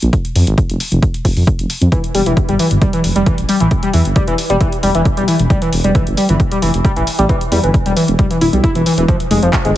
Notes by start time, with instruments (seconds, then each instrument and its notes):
0.02 detuned saw bass A#1, closed hi-hat
0.13 kick, closed hi-hat
0.25 closed hi-hat
0.35 detuned saw bass F2, open hi-hat
0.47 detuned saw bass G#1, closed hi-hat
0.58 kick, closed hi-hat
0.69 detuned saw bass F1, closed hi-hat
0.80 open hi-hat
0.92 detuned saw bass F1, closed hi-hat
1.02 kick, closed hi-hat
1.14 closed hi-hat
1.25 detuned saw bass F1, kick, open hi-hat
1.36 detuned saw bass F2, open hi-hat
1.47 kick, closed hi-hat
1.59 detuned saw bass F1, closed hi-hat
1.70 open hi-hat
1.81 detuned saw bass F2, closed hi-hat
1.92 analog synth lead E3, kick, closed hi-hat
2.04 closed hi-hat
2.14 detuned saw bass E1, analog synth lead G3, open hi-hat
2.26 detuned saw bass E1, analog synth lead E3, closed hi-hat
2.37 kick, closed hi-hat
2.48 detuned saw bass G1, analog synth lead G3, closed hi-hat
2.59 analog synth lead E3, open hi-hat
2.71 detuned saw bass G1, closed hi-hat
2.82 analog synth lead G3, kick, closed hi-hat
2.93 analog synth lead E3, closed hi-hat
3.04 detuned saw bass F1, open hi-hat
3.16 detuned saw bass F1, analog synth lead G3, closed hi-hat
3.26 analog synth lead E3, kick, closed hi-hat
3.38 detuned saw bass A1, closed hi-hat
3.49 analog synth lead G3, open hi-hat
3.60 detuned saw bass A1, analog synth lead E3, closed hi-hat
3.71 kick, closed hi-hat
3.83 analog synth lead G3, closed hi-hat
3.93 detuned saw bass E2, analog synth lead E3, open hi-hat
4.05 detuned saw bass G1, closed hi-hat
4.16 analog synth lead G3, kick, closed hi-hat
4.27 detuned saw bass E1, analog synth lead E3, closed hi-hat
4.38 open hi-hat
4.50 detuned saw bass E1, analog synth lead G3, closed hi-hat
4.61 analog synth lead E3, kick, closed hi-hat
4.72 closed hi-hat
4.83 detuned saw bass E1, analog synth lead G3, open hi-hat
4.95 detuned saw bass E1, analog synth lead E3, closed hi-hat
5.05 kick, closed hi-hat
5.17 detuned saw bass E1, analog synth lead G3, closed hi-hat
5.28 analog synth lead E3, open hi-hat
5.39 detuned saw bass E1, closed hi-hat
5.50 analog synth lead G3, kick, closed hi-hat
5.62 analog synth lead E3, closed hi-hat
5.73 detuned saw bass E1, open hi-hat
5.84 detuned saw bass E1, analog synth lead G3, closed hi-hat
5.95 analog synth lead E3, kick, closed hi-hat
6.07 detuned saw bass G1, closed hi-hat
6.17 analog synth lead G3, open hi-hat
6.29 detuned saw bass G1, analog synth lead E3, closed hi-hat
6.40 kick, closed hi-hat
6.51 analog synth lead G3, closed hi-hat
6.62 detuned saw bass F1, analog synth lead E3, open hi-hat
6.74 detuned saw bass F1, closed hi-hat
6.85 analog synth lead G3, kick, closed hi-hat
6.96 detuned saw bass A1, analog synth lead E3, closed hi-hat
7.07 open hi-hat
7.19 detuned saw bass A1, analog synth lead G3, closed hi-hat
7.29 analog synth lead E3, kick, closed hi-hat
7.41 closed hi-hat
7.52 detuned saw bass E2, analog synth lead G3, open hi-hat
7.63 detuned saw bass G1, analog synth lead E3, closed hi-hat
7.74 kick, closed hi-hat
7.86 detuned saw bass E1, analog synth lead G3, closed hi-hat
7.96 analog synth lead E3, open hi-hat
8.08 detuned saw bass E1, closed hi-hat
8.19 analog synth lead G3, kick, closed hi-hat
8.31 analog synth lead E3, closed hi-hat
8.41 detuned saw bass D1, analog synth lead E4, open hi-hat
8.53 detuned saw bass B1, analog synth lead G3, closed hi-hat
8.64 analog synth lead E4, kick, closed hi-hat
8.75 detuned saw bass E1, analog synth lead E3, closed hi-hat
8.86 analog synth lead E3, open hi-hat
8.98 detuned saw bass E1, analog synth lead E3, closed hi-hat
9.08 analog synth lead F3, kick, closed hi-hat
9.20 closed hi-hat
9.31 detuned saw bass F1, analog synth lead G#3, open hi-hat
9.42 detuned saw bass F1, analog synth lead F3, closed hi-hat
9.53 kick, clap, closed hi-hat
9.65 detuned saw bass G1, analog synth lead G#3, closed hi-hat